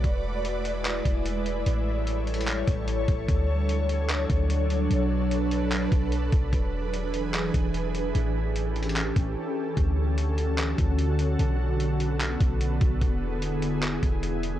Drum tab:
HH |x-----x--x--x--x--x--x--|x-----x--xxxx--x--x--x--|x-----x--x--x--x--x--x--|x-----x--x--x--x--x--x--|
CP |------------x-----------|------------x-----------|------------x-----------|------------x-----------|
BD |o--------------o--------|---------------o-----o--|o--------------o--------|---------------o-----o--|

HH |x-----x--x--x--x--x--x--|x-----x--xxxx--x--------|x-----x--x--x--x--x--x--|x-----x--x--x--x--x--x--|
CP |------------x-----------|------------x-----------|------------x-----------|------------x-----------|
BD |o--------------o--------|---------------o--------|o--------------o--------|---------------o-----o--|

HH |x-----x--x--x--x--x--x--|
CP |------------x-----------|
BD |o--------------o--------|